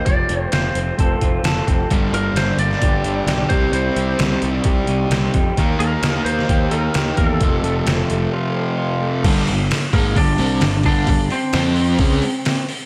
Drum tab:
CC |----------------|----------------|----------------|----------------|
HH |x-x-x-x-x-x-x-x-|x-x-x-x-x-x-x-x-|x-x-x-x-x-x-x-x-|x-x-x-x-x-x-x-x-|
SD |----o-------o---|----o--o----o---|----o-------o---|----o--o----o---|
BD |o-------o-o---o-|o-------o-----o-|--------o-----o-|o-------o-----o-|

CC |----------------|x---------------|----------------|
HH |x-x-x-x---------|o-o-o-o-o-o-o-o-|o-o-o-o-o-o-o-o-|
SD |----o-----------|----o-------o---|----o-------o---|
BD |o---------------|o-----o-o-----o-|o-------o-------|